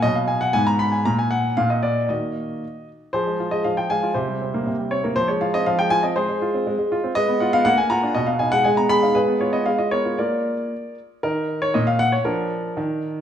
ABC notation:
X:1
M:2/4
L:1/16
Q:1/4=118
K:Ebm
V:1 name="Grand piano"
e f a ^f a b c' a | b a g2 f e =d2 | e6 z2 | [K:Fm] [Ac]3 e f g [fa]2 |
[Gc]6 d B | c d f e f g a e | [Ac]6 z2 | [K:Ebm] [ce]2 g f g a [gb]2 |
e f a g a b c' f | [Ac]2 d e f e [Bd]2 | [B=d]6 z2 | [EB]3 d e f g d |
[=DB]6 z2 |]
V:2 name="Grand piano"
[=B,,^F,]4 [A,,C]4 | [B,,B,]4 [B,,B,]4 | [E,B,G]4 z4 | [K:Fm] F, A, F A, F, F A, F |
C, G, C B, C, G, C B, | F, A, F C F, A, F C | A, A, F C A, A, F C | [K:Ebm] A, C F C B, B, F =D |
C, C E A, A, C A E | A, C F C A, F C F | [B,F]4 z4 | E,4 B,,4 |
F,4 E,4 |]